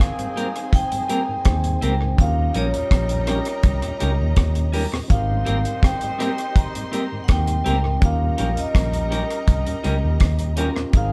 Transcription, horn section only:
Already playing: D#3 C4 G#4
2.19 G3 D#4 A#4
5.10 G3 D#4 C5
8.01 G3 D#4 A#4
10.94 D#3 C4 G#4

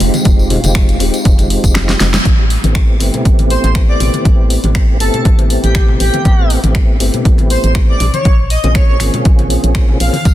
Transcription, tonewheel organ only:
Already playing: G#3 C4 D#4 F4 G4
0.64 G#3 C4 D#4 F4 G4
1.00 G#3 C4 D#4 F4 G4
2.00 G#3 C4 D#4 F4 G4
2.64 A3 B3 C4 E4 G4
3.00 A3 B3 C4 E4 G4
4.64 A3 B3 C4 E4 G4
5.00 A3 B3 C4 E4 G4
6.64 A3 B3 C4 E4 G4
7.00 A3 B3 C4 E4 G4
8.64 A#3 C4 C#4 F4 G#4
9.00 A#3 C4 C#4 F4 G#4
10.00 A#3 C4 C#4 F4 G#4

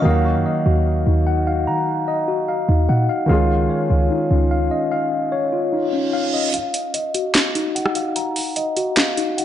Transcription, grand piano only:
0.02 D#3 F#3 A#3
0.07 F#4 F5
3.26 D#3 G#3 C#4
3.31 F4 G#4

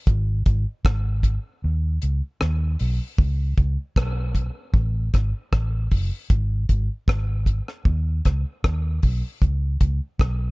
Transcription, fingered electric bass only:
0.07 G#1
0.47 G#1
0.85 G#1
1.64 D#2
2.03 C#2
2.42 D#2
2.81 B1
3.19 C#2
3.58 C#2
3.97 B1
4.74 A1
5.14 G#1
5.53 A1
5.92 F#1
6.30 G#1
6.70 G#1
7.08 G#1
7.86 D#2
8.26 C#2
8.65 D#2
9.04 B1
9.42 C#2
9.82 C#2
10.20 B1

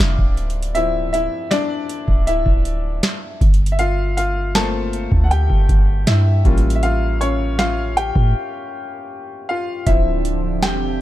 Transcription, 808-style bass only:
0.00 F1
0.19 D1
2.08 D1
2.46 D1
3.41 G1
5.12 D2
5.50 G1
5.69 G1
6.08 G2
6.45 A1
8.16 A2
9.87 D1
10.63 E1

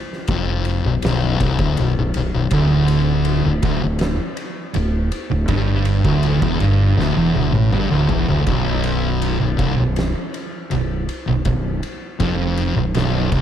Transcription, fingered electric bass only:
0.28 F1
0.85 B0
1.02 B0
1.40 C1
1.59 D1
1.79 B0
1.98 B0
2.15 B0
2.34 B0
2.51 D1
3.46 D1
3.63 D1
3.83 D1
4.75 D1
5.31 D1
5.49 G1
6.04 D1
6.42 E1
6.61 G1
6.97 D1
7.16 E1
7.35 D1
7.54 A1
7.72 G1
7.91 D1
8.11 E1
8.29 D1
8.47 B0
9.42 B0
9.59 C1
9.79 B0
10.72 B0
11.28 B0
11.46 B0
12.20 F1
12.77 B0
12.96 B0
13.32 C1

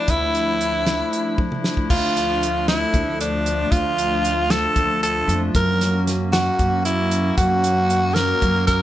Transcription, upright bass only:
0.08 D2
1.90 D2
2.94 D2
3.72 D2
4.76 D2
5.28 F2
5.55 F#2
6.59 F#2
7.38 F#2
8.42 F#2

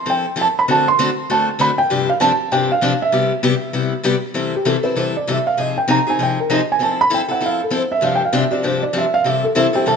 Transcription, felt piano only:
0.10 G5
0.41 A5
0.59 B5
0.71 A5
0.88 C6
1.31 A5
1.61 B5
1.78 G5
2.09 F5
2.21 A5
2.52 G5
2.72 F5
3.02 E5
4.56 G4
4.67 A4
4.84 B4
4.97 C5
5.17 D5
5.31 E5
5.47 F5
5.60 D#5
5.78 G5
5.91 A#5
6.10 G#5
6.23 G5
6.40 A#4
6.53 D#5
6.72 G#5
6.83 A5
7.01 B5
7.14 G5
7.31 F#5
7.46 F5
7.64 A4
7.76 C5
7.92 E5
8.04 F5
8.15 G5
8.25 F5
8.37 E5
8.52 D5
8.65 C5
8.83 D5
8.98 E5
9.14 F5
9.26 E5
9.44 A4
9.57 E4 A4 C5 E5
9.75 G4 C5 E5 G5
9.87 A4 C5 E5 A5

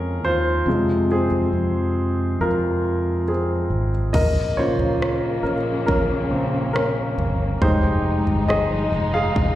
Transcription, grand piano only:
Already playing: C#4 G#4 A#4
0.25 F4 C5
0.68 C3 F3 G#3
1.12 C4 G#4
2.41 F4 A#4
3.28 C4 G#4
4.13 A#4 D#5
4.57 C#3 A#3 F4 C5 C#5
5.43 C#4 A#4
5.86 C#4 A#4
6.30 C#3 A#3 C4
6.73 C#4 A#4
7.62 G#3 D#4 G4 C5
8.48 G#4 D#5
9.14 G#4 F5

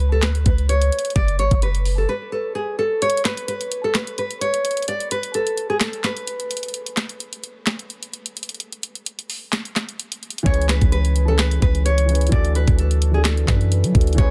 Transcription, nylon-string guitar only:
0.12 A4
0.23 B4
0.46 B4
0.69 C#5
1.16 D5
1.39 C#5
1.63 B4
1.98 A4
2.09 B4
2.32 A4
2.55 G#4
2.79 A4
3.02 C#5
3.25 B4
3.48 B4
3.84 A4
3.94 B4
4.19 B4
4.41 C#5
4.88 D5
5.12 B4
5.35 A4
5.70 G#4
6.04 B4
10.46 C#5
10.69 B4
10.92 B4
11.28 A4
11.39 B4
11.62 B4
11.85 C#5
12.32 D5
12.56 B4
12.79 A4
13.14 G#4
13.48 B4
14.18 C#5

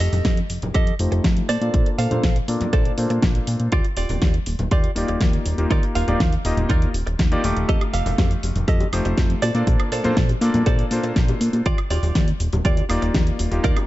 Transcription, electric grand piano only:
0.99 A3 D#4 F4 G4 C5
1.61 A#3 D4 F4 A4 D5
2.11 A#3 D4 F4 A4 C5
2.48 A#3 D4 F4 A4 D5
2.97 A#3 D4 F4 A4 C5
4.95 A#3 D#4 F4 G4 D5
5.58 A#3 D#4 F4 G4
6.07 A#3 D#4 F4 G4 D5
6.45 A#3 D#4 F4 G4 D#5
7.32 A#3 D#4 F4 G4 D5
7.43 A3 D#4 F4 G4 D6
8.93 A3 D#4 F4 G4 C5
9.54 A#3 D4 F4 A4 D5
10.04 A#3 D4 F4 A4 C5
10.41 A#3 D4 F4 A4 D5
10.91 A#3 D4 F4 A4 C5
12.89 A#3 D#4 F4 G4 D5
13.51 A#3 D#4 F4 G4

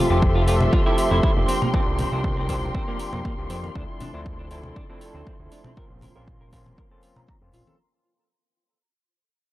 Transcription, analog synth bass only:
0.10 F1
1.11 F1
1.36 F1
1.74 C2
1.87 C2
2.12 C2
3.13 F2
3.38 C2
3.50 F2
3.75 D2
4.14 D2
5.14 D2
5.40 D2
5.77 A#1
5.90 A#1
6.15 A#1
7.42 F2
7.53 A#1

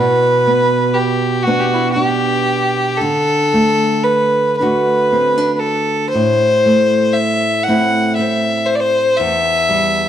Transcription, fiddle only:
Already playing: B4
0.94 G4
1.43 F#4
1.60 F#4 G4
1.74 E4 F#4
1.92 F#4
2.03 G4
2.97 A4
4.04 B4
4.57 B4
5.56 A4 B4
6.10 C5
7.13 E5
7.64 F#5
8.16 E5
8.66 C5
8.76 D5
8.80 C5
9.17 E5

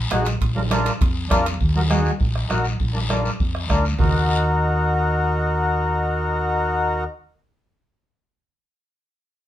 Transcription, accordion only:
0.12 D#4 F#4 G#4
0.56 D4 F4 A#4
0.71 D4 F4 A#4
1.30 D4 F4 A#4
1.76 D#4 F#4 A#4
1.90 D#4 F#4 G#4
2.49 D#4 F#4 A#4
2.93 D4 F4 A#4
3.09 D4 F4 A#4
3.69 D4 F4 A#4
3.99 D#4 F#4 A#4

